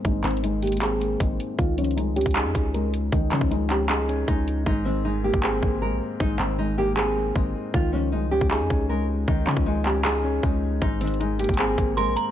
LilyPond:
<<
  \new Staff \with { instrumentName = "Synth bell" } { \time 4/4 \key aes \major \tempo 4 = 156 r1 | r1 | r1 | r1 |
r1 | r1 | r1 | r2. c'''8 bes''8 | }
  \new Staff \with { instrumentName = "Nylon-string guitar" } { \time 4/4 \key aes \major ees'8 c'8 ees'8 g'8 aes'4 ees'4 | f'8 des'8 ees'8 g'8 aes'4 bes'8 r8 | ees'8 des'8 ees'8 g'8 aes'4 ees'4 | ees'8 c'8 ees'8 g'8 aes'4 bes'8 r8 |
ees'8 c'8 ees'8 g'8 aes'4 ees'4 | f'8 des'8 ees'8 g'8 aes'4 bes'8 r8 | ees'8 des'8 ees'8 g'8 aes'4 ees'4 | ees'8 c'8 ees'8 g'8 aes'4 bes'8 r8 | }
  \new Staff \with { instrumentName = "Felt piano" } { \clef bass \time 4/4 \key aes \major <aes, aes bes c'>8 ees8 aes8 bes8 c'8 bes8 aes4 | ees8 f8 aes8 des'8 ees'8 des'8 aes4 | ees8 f8 aes8 des'8 ees'8 des'8 aes4 | aes,8 ees8 aes8 bes8 c'8 bes8 aes4 |
aes,8 ees8 aes8 bes8 c'8 bes8 aes4 | ees8 f8 aes8 des'8 ees'8 des'8 aes4 | ees8 f8 aes8 des'8 ees'8 des'8 aes4 | aes,8 ees8 aes8 bes8 c'8 bes8 aes4 | }
  \new Staff \with { instrumentName = "808-style bass" } { \clef bass \time 4/4 \key aes \major aes,,8 aes,,2~ aes,,8 aes,,8 r8 | des,4 c,16. des,16. des,8 f,16 des,4. | des,8 des16 des,2~ des,16 des,4 | aes,,4.~ aes,,16 aes,,8. aes,,8. bes,,16 r8 |
aes,,8 aes,,2~ aes,,8 aes,,8 r8 | des,4 c,16. des,16. des,8 f,16 des,4. | des,8 des16 des,2~ des,16 des,4 | aes,,4.~ aes,,16 aes,,8. aes,,8. bes,,16 r8 | }
  \new DrumStaff \with { instrumentName = "Drums" } \drummode { \time 4/4 \tuplet 3/2 { <hh bd>16 r16 r16 <hc hh>16 hh16 hh16 } hh8 <hh hho>32 hh32 hh32 hh32 <hc hh>8 hh8 <hh bd>8 hh8 | \tuplet 3/2 { <hh bd>16 r16 r16 hh16 hh16 hh16 } hh8 hh32 hh32 <hh bd>32 hh32 <hc hh>8 <hh bd>8 hh8 hh8 | <hh bd>8 <hc hh>16 bd16 hh8 <hc hh>8 <hc hh>8 hh8 <hh bd>8 hh8 | bd4 r8. bd16 hc8 bd8 r4 |
bd8 hc8 r4 hc4 bd4 | bd4 r8. bd16 hc8 bd8 r4 | bd8 hc16 bd16 r8 hc8 hc4 bd4 | \tuplet 3/2 { <hh bd>16 r16 r16 hh16 hh16 hh16 } hh8 hh32 hh32 <hh bd>32 hh32 <hc hh>8 <hh bd>8 hh8 hh8 | }
>>